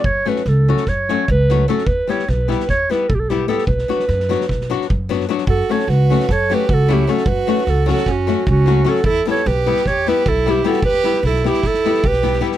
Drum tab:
SD |--ooo--oo-o---o-oo|--ooo-ooo-o---o-oo|-ooooooooooo--oooo|--ooo-ooo-o---o-oo|
BD |o-------o---o-----|o-------o---o-----|o-------o---o-----|o-------o---o-----|

SD |--ooo-ooo-o---o-oo|--ooo--oo-o---o-oo|-ooooooooooo-ooooo|
BD |o-------o---o-----|o-------o---o-----|o-------o---o-----|